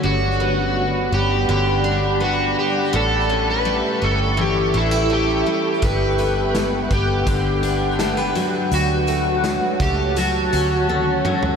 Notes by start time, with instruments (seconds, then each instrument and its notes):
Already playing: twelve-string acoustic guitar D3 F#3 A3 C#4
0.03 fingered electric bass G1, twelve-string acoustic guitar G2, ambient pad G3 D5 F#5 B5, electric slide guitar F#4
0.40 twelve-string acoustic guitar B3
1.12 fingered electric bass G1, twelve-string acoustic guitar B3, electric slide guitar G4
1.49 fingered electric bass G1, twelve-string acoustic guitar D3, electric slide guitar G4
1.84 twelve-string acoustic guitar D4
2.20 twelve-string acoustic guitar B3, electric slide guitar F#4
2.59 electric slide guitar G4
2.93 fingered electric bass A1, twelve-string acoustic guitar A2, ambient pad A4 E5 G5 C#6, electric slide guitar A4
3.30 twelve-string acoustic guitar C#4
3.50 electric slide guitar B4
3.65 twelve-string acoustic guitar G3
4.02 fingered electric bass G1, twelve-string acoustic guitar C#4, electric slide guitar A4
4.37 twelve-string acoustic guitar E3, electric slide guitar G4
4.74 fingered electric bass A1, twelve-string acoustic guitar D4, electric slide guitar E4
4.91 twelve-string acoustic guitar E4
5.10 twelve-string acoustic guitar C#4, electric slide guitar G4
5.46 twelve-string acoustic guitar G3
5.82 fingered electric bass G1, twelve-string acoustic guitar G2, ambient pad B4 F#5, electric slide guitar B4, kick, closed hi-hat
6.18 twelve-string acoustic guitar B3, closed hi-hat
6.55 snare, closed hi-hat
6.91 fingered electric bass G1, twelve-string acoustic guitar B3, electric slide guitar G4, kick, closed hi-hat
7.27 fingered electric bass G1, twelve-string acoustic guitar D3, kick, closed hi-hat
7.63 twelve-string acoustic guitar D4, closed hi-hat
7.99 twelve-string acoustic guitar A3, snare, closed hi-hat
8.17 twelve-string acoustic guitar B3
8.35 twelve-string acoustic guitar F#3, closed hi-hat
8.71 fingered electric bass D2, electric slide guitar F#4, ambient pad C#5 A5, closed hi-hat
9.07 twelve-string acoustic guitar A3, closed hi-hat
9.44 snare, closed hi-hat
9.80 fingered electric bass C#2, twelve-string acoustic guitar A3, electric slide guitar G4, kick, closed hi-hat
10.16 twelve-string acoustic guitar F#3, electric slide guitar F#4, closed hi-hat
10.53 fingered electric bass D2, twelve-string acoustic guitar C#4, closed hi-hat
10.89 twelve-string acoustic guitar A3, high tom
11.25 twelve-string acoustic guitar F#3, mid tom
11.43 floor tom